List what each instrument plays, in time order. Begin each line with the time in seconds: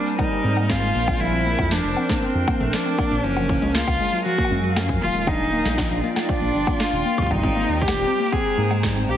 Already playing: ambient pad G3 A#4 C5 G#5, cello D4
0.06 closed hi-hat
0.19 synth pluck G3, cello D#4, kick, closed hi-hat, high bongo
0.31 synth pluck G3
0.44 detuned saw bass G#2, synth pluck C4
0.57 synth pluck A#3, closed hi-hat, high bongo
0.70 synth pluck C4, cello F4, kick, snare, closed hi-hat
0.82 closed hi-hat
0.87 closed hi-hat
0.91 closed hi-hat
0.95 detuned saw bass A#1, synth pluck A#3, closed hi-hat
0.99 closed hi-hat
1.04 closed hi-hat
1.08 synth pluck G#3, kick, closed hi-hat, high bongo, shaker
1.20 synth pluck F3, ambient pad D4 A5, cello E4, closed hi-hat
1.33 synth pluck C4
1.46 synth pluck A#3
1.59 detuned saw bass F2, kick, closed hi-hat, high bongo
1.71 synth pluck F3, cello D4, snare, closed hi-hat
1.84 detuned saw bass F1, synth pluck F3
1.97 synth pluck C4, high bongo, shaker
2.09 synth pluck A#3, kick, snare, closed hi-hat
2.22 cello C4, synth pluck C4, closed hi-hat
2.35 detuned saw bass F2
2.48 synth pluck A#3, kick, high bongo
2.60 detuned saw bass A#1, synth pluck A3, closed hi-hat
2.73 synth pluck F3, cello D4, snare, closed hi-hat
2.86 synth pluck C4, closed hi-hat
2.98 synth pluck A#3, kick, high bongo
3.11 detuned saw bass A#1, closed hi-hat
3.24 detuned saw bass F#1, synth pluck F3, ambient pad F#3 F5 G#5, cello C#4, closed hi-hat
3.37 synth pluck F3, high bongo
3.49 synth pluck A#3, kick
3.62 detuned saw bass C#2, synth pluck G#3, closed hi-hat
3.75 synth pluck A#3, cello F4, snare, closed hi-hat
3.87 detuned saw bass C#2, kick, high bongo
4.00 synth pluck G#3, shaker
4.13 synth pluck F#3, closed hi-hat
4.25 synth pluck F3, cello F#4, closed hi-hat
4.38 synth pluck A#3, kick
4.45 high bongo
4.51 detuned saw bass F#2, synth pluck G#3
4.64 closed hi-hat
4.76 synth pluck F3, snare, closed hi-hat, high bongo
4.89 synth pluck F3, kick, closed hi-hat
5.02 detuned saw bass D#1, synth pluck A#3, cello F4
5.14 synth pluck G#3, closed hi-hat, shaker
5.27 synth pluck D4, cello D#4, ambient pad F4 D5 G5, kick, closed hi-hat, high bongo
5.36 closed hi-hat
5.44 closed hi-hat
5.52 synth pluck A#3
5.65 detuned saw bass A#1, synth pluck G3, snare, closed hi-hat
5.78 synth pluck F3, kick, snare, closed hi-hat, high bongo
5.91 detuned saw bass A#1, synth pluck D4
6.03 synth pluck A#3, shaker
6.16 snare, closed hi-hat, high bongo
6.22 cello D#4
6.29 synth pluck F3, cello D4, kick, closed hi-hat
6.42 detuned saw bass A#1, synth pluck F3
6.54 detuned saw bass G1, synth pluck D4
6.67 synth pluck A#3, kick, high bongo
6.80 synth pluck D4, cello F4, snare, closed hi-hat
6.93 detuned saw bass D#1, closed hi-hat
7.05 synth pluck A#3
7.18 synth pluck G3, kick, closed hi-hat, high bongo
7.22 kick
7.26 kick
7.30 detuned saw bass G#1, synth pluck G3, ambient pad G#3 C5 A#5, cello D#4, kick, closed hi-hat, high bongo
7.35 kick
7.39 kick
7.43 synth pluck C4, kick
7.56 synth pluck A#3
7.69 detuned saw bass D#2, closed hi-hat
7.81 synth pluck G3, cello G4, kick, closed hi-hat
7.88 snare, high bongo
7.94 detuned saw bass D#1, synth pluck G4
8.07 synth pluck C4, shaker
8.20 synth pluck A#3, closed hi-hat
8.32 synth pluck C4, cello G#4, kick, closed hi-hat, high bongo
8.58 detuned saw bass G#2, synth pluck A#3
8.71 synth pluck G#3, closed hi-hat, high bongo
8.83 synth pluck G3, kick, snare, closed hi-hat
8.96 synth pluck C4, closed hi-hat
9.09 detuned saw bass A#1, synth pluck A#3, cello G4